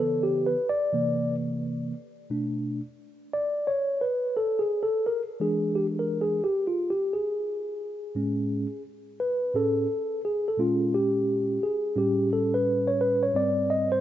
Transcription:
Already playing: C#3 E3 B3
0.00 A4
0.23 G4
0.46 B4
0.70 D5
0.93 C3 E3 A#3
2.30 B2 A3 D4
3.33 D5
3.67 C#5
4.01 B4
4.37 A4
4.59 G#4
4.83 A4
5.06 A#4
5.40 E3 G#3 D4 G#4
5.75 G4
5.99 A#4
6.21 G#4
6.44 G4
6.67 F4
6.90 G4
7.13 G#4
8.15 A2 G#3 C#4
9.20 B4
9.54 A2 C#4 G#4 A4
10.25 G#4
10.48 A4
10.57 A#2 G#3 C#4 F4
10.94 G4
11.63 G#4
11.95 A2 G3 C#4 G4
12.33 A4
12.54 B4
12.87 C#5
13.01 B4
13.23 C#5
13.34 G#2 G3 C4 D5
13.70 D#5
13.92 C5

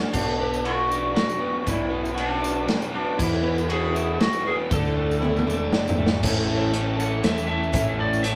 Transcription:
Already playing: D3 A3 C#4 D4 F#4 A4 D5
0.13 B1 B2 F#3 B3 D4 F#4 B4, kick, crash, tambourine
0.39 B3
0.54 tambourine
0.65 F#3 B3 D4 F#4, ride
0.91 B3 D4 F#4, tambourine
1.16 F#3 B3 D4 F#4, snare, ride
1.30 tambourine
1.41 B3 D4 F#4
1.64 B1 B2, kick, ride, tambourine
1.68 B2 F#3 B3 D4 E4 F#4
1.90 B3
2.05 tambourine
2.14 F#3 F#4, ride
2.19 B3 D4 F#4
2.41 D4 F#4, tambourine
2.46 B3 D4
2.68 F#3 B3 C#4 D4 F#4, snare, ride
2.82 tambourine
2.92 B3 D4 F#4
2.96 B3 D4
3.18 E2 E3 B3 E4 F#4 B4, kick, crash, tambourine
3.42 B3
3.58 tambourine
3.69 E3 B3 E4 F#4 G#4, ride
3.95 B3 E4 F#4, tambourine
4.20 E3 B3 E4 F#4, snare, ride
4.33 tambourine
4.45 B3 E4 F#4 G#4
4.70 D2 D3 E3 A3 D4 E4 A4, kick, ride, tambourine
4.85 tambourine
4.96 A3
5.11 tambourine
5.21 E3 A3 D4 E4 A4, high tom
5.36 high tom, tambourine
5.47 E1 A3 D4 A4, tambourine
5.72 F#1 D3 E3 A3 D4 A4, snare
5.88 floor tom, tambourine
5.98 G#1 A3 D4 A4
6.06 snare
6.23 A1 A2 E3 A3 C#4 E4 A4, kick, crash, tambourine
6.48 C#4 E4 A4
6.74 A3 C#4 E4 A4, closed hi-hat
6.99 A2 A3 C#4 E4 A4 F#5, tambourine
7.23 E2 A3 C#4 E4 A4 E5, snare, closed hi-hat
7.38 tambourine
7.47 A3 C#4 E4 A4 E5
7.64 tambourine
7.72 A1 A2 E3 A3 C#4 E4 A4, kick, closed hi-hat, tambourine
7.99 C#4 E4 A4 D5
8.13 tambourine
8.23 A3 C#4 E4 A4 E5, closed hi-hat

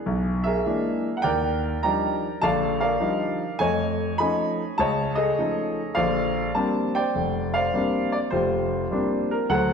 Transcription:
Already playing: B3 G#4
0.06 B1
0.44 G#4 A#4 E5
0.66 E3 G#3 A#3 D4
1.17 F#5
1.22 D#2 A#4 D5 G5
1.83 F3 G3 D4 D#4 D5 G5 A#5
2.42 A#1 D3 D5 F5 A5
2.81 A#4 D5 F5
3.00 F3 G3 D4 D#4
3.59 F2 A3 C#5 D#5 G#5
4.18 F3 A3 C#4 D#4 D#5 G#5 B5
4.78 C#2 C#5 D#5 A5
5.15 G#4 A4 D#5
5.39 F3 A3 C#4 D#4
5.95 A#1 D3 C5 D5 F5
6.55 G3 A#3 C4 D4 A5
6.95 C5 D5 G5
7.15 F1
7.54 C5 D5 F5
7.74 G3 A#3 C4 D4
8.12 D5
8.30 F1 F4 G4 C5
8.91 G3 A#3 C4 D4
9.31 A#4
9.49 D2 F#3 A4 C5 F#5

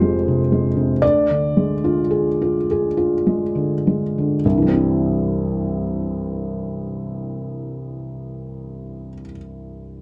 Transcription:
Already playing: F1 F2 C3 F4 G4 G#4 C5
0.00 G#3
0.28 C3
0.52 G#3
0.77 C3
1.02 D2 D5
1.30 D3
1.57 G#3
1.84 F4
2.11 G#4
2.42 F4
2.71 G#4
2.97 F4
3.27 G#3
3.55 D3
3.87 G#3
4.18 D3
4.45 C2
4.52 G2
4.57 E3
4.62 G3
4.68 C4
4.74 E4

